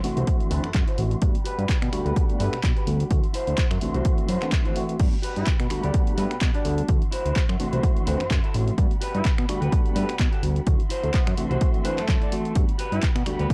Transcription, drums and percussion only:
0.04 open hi-hat medium
0.17 closed hi-hat soft
0.27 kick loud
0.27 closed hi-hat medium
0.40 closed hi-hat soft
0.51 open hi-hat medium
0.64 finger snap medium
0.64 closed hi-hat soft
0.74 kick loud
0.74 clap loud
0.74 closed hi-hat medium
0.88 closed hi-hat soft
0.98 open hi-hat medium
1.11 closed hi-hat soft
1.22 kick loud
1.22 closed hi-hat medium
1.35 closed hi-hat soft
1.45 open hi-hat loud
1.59 closed hi-hat soft
1.69 kick loud
1.69 clap loud
1.69 closed hi-hat medium
1.82 finger snap medium
1.82 closed hi-hat soft
1.93 finger snap medium
1.93 open hi-hat medium
2.06 closed hi-hat soft
2.16 kick loud
2.16 closed hi-hat medium
2.29 closed hi-hat soft
2.40 open hi-hat loud
2.53 finger snap medium
2.53 closed hi-hat soft
2.63 kick loud
2.63 clap loud
2.63 closed hi-hat medium
2.77 closed hi-hat soft
2.87 open hi-hat medium
3.00 closed hi-hat soft
3.11 kick loud
3.11 closed hi-hat medium
3.24 closed hi-hat soft
3.34 open hi-hat loud
3.47 closed hi-hat soft
3.58 kick loud
3.58 clap loud
3.58 closed hi-hat medium
3.71 finger snap medium
3.71 closed hi-hat soft
3.81 open hi-hat medium
3.94 closed hi-hat soft
4.05 kick loud
4.05 closed hi-hat loud
4.18 closed hi-hat soft
4.29 open hi-hat loud
4.42 finger snap medium
4.42 clap soft
4.42 closed hi-hat soft
4.52 kick loud
4.52 clap loud
4.52 closed hi-hat loud
4.65 closed hi-hat soft
4.76 open hi-hat medium
4.89 closed hi-hat soft
4.99 kick loud
4.99 closed hi-hat medium
4.99 crash medium
5.13 closed hi-hat soft
5.23 open hi-hat loud
5.36 closed hi-hat soft
5.47 kick loud
5.47 clap loud
5.47 closed hi-hat medium
5.60 finger snap medium
5.60 closed hi-hat soft
5.70 finger snap medium
5.70 open hi-hat medium
5.84 closed hi-hat soft
5.94 kick loud
5.94 closed hi-hat medium
6.07 closed hi-hat soft
6.18 open hi-hat loud
6.31 finger snap medium
6.31 closed hi-hat soft
6.41 kick loud
6.41 clap loud
6.41 closed hi-hat medium
6.54 closed hi-hat soft
6.65 open hi-hat medium
6.78 closed hi-hat soft
6.89 kick loud
6.89 closed hi-hat medium
7.02 closed hi-hat soft
7.12 open hi-hat loud
7.26 closed hi-hat soft
7.36 kick loud
7.36 clap loud
7.36 closed hi-hat medium
7.49 finger snap medium
7.49 closed hi-hat soft
7.60 open hi-hat medium
7.73 closed hi-hat soft
7.83 kick loud
7.83 closed hi-hat medium
7.97 closed hi-hat soft
8.07 open hi-hat loud
8.20 finger snap medium
8.20 closed hi-hat soft
8.31 kick loud
8.31 clap loud
8.31 closed hi-hat loud
8.44 closed hi-hat soft
8.54 open hi-hat medium
8.67 closed hi-hat soft
8.78 kick loud
8.78 closed hi-hat medium
8.91 closed hi-hat soft
9.01 open hi-hat loud
9.15 closed hi-hat soft
9.25 kick loud
9.25 clap loud
9.25 closed hi-hat medium
9.38 finger snap medium
9.38 closed hi-hat soft
9.49 finger snap medium
9.49 open hi-hat medium
9.62 closed hi-hat soft
9.72 kick loud
9.72 closed hi-hat medium
9.86 closed hi-hat soft
9.96 open hi-hat loud
10.09 finger snap medium
10.09 closed hi-hat soft
10.19 kick loud
10.19 clap loud
10.19 closed hi-hat medium
10.33 closed hi-hat soft
10.43 open hi-hat loud
10.56 closed hi-hat soft
10.67 kick loud
10.67 closed hi-hat medium
10.80 closed hi-hat soft
10.90 open hi-hat loud
11.04 closed hi-hat soft
11.14 kick loud
11.14 clap loud
11.14 closed hi-hat medium
11.27 finger snap medium
11.27 closed hi-hat soft
11.37 open hi-hat medium
11.51 closed hi-hat soft
11.61 kick loud
11.61 closed hi-hat medium
11.74 closed hi-hat soft
11.85 open hi-hat loud
11.98 finger snap medium
11.98 clap soft
11.98 closed hi-hat soft
12.09 kick loud
12.09 clap loud
12.09 closed hi-hat medium
12.22 closed hi-hat soft
12.32 open hi-hat loud
12.45 closed hi-hat soft
12.55 kick loud
12.55 closed hi-hat medium
12.69 closed hi-hat soft
12.79 open hi-hat loud
12.92 closed hi-hat soft
13.03 kick loud
13.03 clap loud
13.03 closed hi-hat medium
13.16 finger snap medium
13.16 closed hi-hat soft
13.26 finger snap medium
13.26 open hi-hat medium
13.39 closed hi-hat soft
13.50 kick loud
13.50 closed hi-hat medium

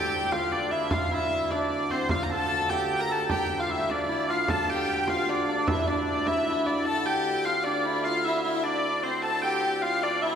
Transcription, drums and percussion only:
0.12 frame drum soft
0.32 frame drum medium
0.51 frame drum soft
0.91 frame drum medium
1.50 frame drum medium
1.90 frame drum soft
2.09 frame drum medium
2.29 frame drum soft
2.50 frame drum soft
2.70 frame drum medium
2.90 frame drum soft
3.30 frame drum medium
3.50 frame drum soft
3.69 frame drum soft
3.90 frame drum medium
4.09 frame drum soft
4.48 frame drum medium
4.69 frame drum soft
4.88 frame drum soft
5.08 frame drum medium
5.28 frame drum soft
5.68 frame drum loud
6.27 frame drum medium
6.66 frame drum soft

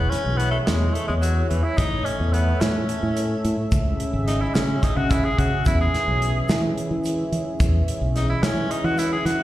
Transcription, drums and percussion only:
0.12 snare soft
0.12 closed hi-hat medium
0.40 closed hi-hat medium
0.67 snare loud
0.67 closed hi-hat medium
0.67 shaker soft
0.95 closed hi-hat medium
0.95 shaker soft
1.23 closed hi-hat medium
1.23 shaker soft
1.51 closed hi-hat soft
1.78 kick medium
1.78 closed hi-hat medium
1.78 shaker soft
2.06 closed hi-hat medium
2.34 closed hi-hat medium
2.61 snare loud
2.61 closed hi-hat medium
2.61 shaker soft
2.89 closed hi-hat medium
2.89 shaker soft
3.17 closed hi-hat medium
3.17 shaker soft
3.45 closed hi-hat medium
3.72 kick loud
3.72 closed hi-hat medium
3.72 shaker soft
4.00 closed hi-hat medium
4.28 snare soft
4.28 closed hi-hat medium
4.55 snare loud
4.55 closed hi-hat medium
4.55 shaker soft
4.82 kick medium
4.82 snare soft
4.82 closed hi-hat medium
4.82 shaker soft
5.10 kick loud
5.10 closed hi-hat medium
5.10 shaker soft
5.38 kick medium
5.38 closed hi-hat medium
5.65 kick loud
5.65 closed hi-hat medium
5.65 shaker medium
5.94 snare soft
5.94 closed hi-hat medium
6.22 closed hi-hat medium
6.49 snare loud
6.49 closed hi-hat medium
6.49 shaker soft
6.78 closed hi-hat medium
7.04 closed hi-hat medium
7.04 shaker soft
7.33 closed hi-hat medium
7.60 kick loud
7.60 closed hi-hat medium
7.60 shaker soft
7.88 closed hi-hat medium
8.16 snare soft
8.16 closed hi-hat medium
8.43 snare loud
8.43 closed hi-hat medium
8.43 shaker soft
8.71 closed hi-hat medium
8.98 snare soft
8.98 closed hi-hat medium
8.98 shaker soft
9.26 snare soft
9.26 closed hi-hat medium

